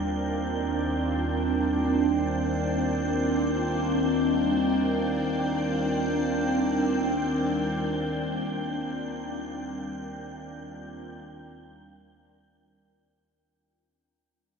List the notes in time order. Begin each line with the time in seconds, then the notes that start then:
Already playing: D#2 D#3 G3 A#3 C4 D4 F4 A#4 G5 G6